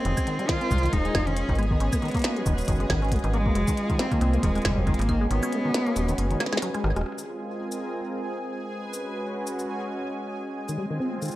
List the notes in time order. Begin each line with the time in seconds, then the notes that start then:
Already playing: C4 G#4 D#5 G#5
0.00 closed hi-hat
0.03 closed hi-hat
0.05 F1 D#3 G#3, closed hi-hat
0.17 kick, closed hi-hat, cabasa, claves
0.24 D#3 F4 C5, closed hi-hat
0.32 A#4
0.39 G3, closed hi-hat
0.49 D#3 F4, kick, snare, closed hi-hat
0.61 C4, closed hi-hat
0.71 C2 G3, kick, closed hi-hat, cabasa
0.78 closed hi-hat
0.83 D#3, closed hi-hat
0.86 closed hi-hat
0.93 D#1 G#3 D#4, kick, closed hi-hat
1.05 G#3, closed hi-hat
1.15 F1 F3, kick, snare, closed hi-hat, claves
1.27 D#3 C#4, closed hi-hat
1.37 closed hi-hat
1.49 G#1 D#3, kick, closed hi-hat
1.55 G#3 B3, closed hi-hat
1.59 closed hi-hat, claves
1.63 closed hi-hat
1.71 D#3 B4, kick
1.78 G#1 C#4, closed hi-hat
1.93 G#3 F#4, kick, closed hi-hat, cabasa, claves
2.02 D#3, closed hi-hat
2.05 closed hi-hat
2.08 closed hi-hat
2.11 kick, closed hi-hat
2.15 A#3, closed hi-hat
2.17 closed hi-hat
2.19 closed hi-hat
2.22 A#3, snare, closed hi-hat
2.24 closed hi-hat
2.36 F#3, closed hi-hat
2.46 D#1 D#3, kick, cabasa
2.58 closed hi-hat, cabasa
2.61 cabasa
2.65 D#3, kick, closed hi-hat, cabasa
2.68 F#1, cabasa
2.72 cabasa
2.75 cabasa
2.80 G#3, closed hi-hat
2.90 G#1 D#3, kick, snare, closed hi-hat, claves
3.02 C#4, closed hi-hat
3.05 closed hi-hat
3.09 kick, closed hi-hat
3.12 G#3, closed hi-hat
3.16 closed hi-hat
3.19 closed hi-hat
3.24 G#1 D#3, closed hi-hat
3.34 G#3 A#3, closed hi-hat
3.46 A#3, kick
3.55 F1 F3 G#3, closed hi-hat
3.66 D#3 F4, kick, closed hi-hat, cabasa
3.75 C4, closed hi-hat
3.90 D#3 A#4, kick, closed hi-hat
3.99 G3 C4, snare, closed hi-hat
4.12 D#3 A#3, kick, closed hi-hat
4.21 C2 C4, closed hi-hat
4.34 G3, closed hi-hat
4.43 D#1 D#3 G#3, kick, closed hi-hat
4.55 G#3, closed hi-hat
4.58 closed hi-hat
4.62 snare, closed hi-hat
4.65 F1 G3 G#3, kick, closed hi-hat, claves
4.71 kick
4.77 F3, kick
4.82 kick
4.87 D#3 G#3, kick, closed hi-hat
4.94 closed hi-hat
4.99 G#1 A#3, closed hi-hat
5.02 closed hi-hat
5.09 D#3 G#3 C#4, kick, closed hi-hat, claves
5.16 F#4
5.21 G#3
5.27 G#1 D#3 B3 B4, closed hi-hat
5.43 C#4, closed hi-hat, cabasa, claves
5.53 G#3, closed hi-hat
5.65 D#3
5.74 A#3, snare, closed hi-hat
5.87 A#3, closed hi-hat
5.96 D#1 F#3, closed hi-hat, cabasa
6.09 D#3, closed hi-hat, cabasa
6.18 F#1, closed hi-hat
6.31 D#3, closed hi-hat
6.40 A#3, snare, closed hi-hat, claves
6.46 snare
6.53 G#3, snare, claves
6.57 snare
6.62 F#3, cross-stick, closed hi-hat
6.74 G#3, cross-stick, closed hi-hat, claves
6.84 G#1 D#3, cross-stick
6.90 claves
6.96 D#1 G#3, cross-stick, closed hi-hat
7.01 cross-stick
7.06 G#3 G#4 G#5, cross-stick
7.12 F4, cross-stick
7.18 C4, cabasa
7.30 A#4
7.72 cabasa
8.59 G#3
8.69 B4
8.78 C#4
8.87 F#4
8.93 cabasa
9.47 cabasa
9.59 cabasa
10.56 G#3
10.69 D#3 C4, cabasa
10.78 G3 F4
10.90 D#3
11.00 C4
11.12 G3
11.22 D#3 A#4, cabasa
11.25 cabasa
11.28 cabasa
11.31 cabasa